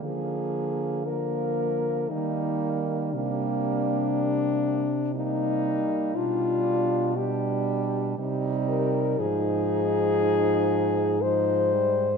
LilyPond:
<<
  \new Staff \with { instrumentName = "French horn" } { \time 3/4 \key c \minor \tempo 4 = 59 aes'4 bes'4 ees'8. r16 | d'2 ees'4 | f'4 g'4 r8 bes'8 | aes'2 c''4 | }
  \new Staff \with { instrumentName = "French horn" } { \time 3/4 \key c \minor bes4 bes4 bes4 | bes4.~ bes16 r16 bes4 | d'4 d'4 ees'4 | ees'2 ees'8. r16 | }
  \new Staff \with { instrumentName = "French horn" } { \clef bass \time 3/4 \key c \minor f4 f4 g4 | g4.~ g16 r16 g4 | g4 g4 g4 | f2 f8 g8 | }
  \new Staff \with { instrumentName = "French horn" } { \clef bass \time 3/4 \key c \minor d2 ees4 | c2~ c8. r16 | b,2 c4 | aes,2. | }
>>